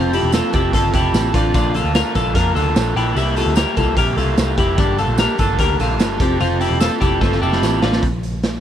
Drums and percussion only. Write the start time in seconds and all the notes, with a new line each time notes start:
0.13 closed hi-hat, tambourine
0.32 snare, closed hi-hat, tambourine
0.53 kick, closed hi-hat, tambourine
0.73 kick, closed hi-hat, tambourine
0.94 kick, closed hi-hat, tambourine
1.14 snare, closed hi-hat, tambourine
1.34 kick, closed hi-hat, tambourine
1.54 kick, closed hi-hat, tambourine
1.74 closed hi-hat, tambourine
1.95 snare, closed hi-hat, tambourine
2.15 kick, closed hi-hat, tambourine
2.35 kick, closed hi-hat
2.56 closed hi-hat, tambourine
2.76 snare, closed hi-hat, tambourine
2.97 closed hi-hat
3.16 closed hi-hat, tambourine
3.36 closed hi-hat, tambourine
3.56 snare, closed hi-hat, tambourine
3.76 kick, closed hi-hat, tambourine
3.97 kick, closed hi-hat, tambourine
4.17 closed hi-hat, tambourine
4.38 snare, closed hi-hat, tambourine
4.58 kick, closed hi-hat
4.78 kick, closed hi-hat, tambourine
4.98 closed hi-hat, tambourine
5.18 snare, closed hi-hat, tambourine
5.38 kick, closed hi-hat, tambourine
5.59 kick, closed hi-hat, tambourine
5.80 closed hi-hat, tambourine
5.99 snare, closed hi-hat, tambourine
6.20 kick, closed hi-hat, tambourine
6.41 closed hi-hat, tambourine
6.61 closed hi-hat, tambourine
6.80 snare, closed hi-hat, tambourine
7.01 kick, closed hi-hat, tambourine
7.21 kick, snare, tambourine
7.32 snare
7.43 tambourine
7.52 snare
7.63 snare, tambourine
7.82 snare
7.92 snare
8.03 kick, closed hi-hat
8.23 closed hi-hat
8.43 snare, closed hi-hat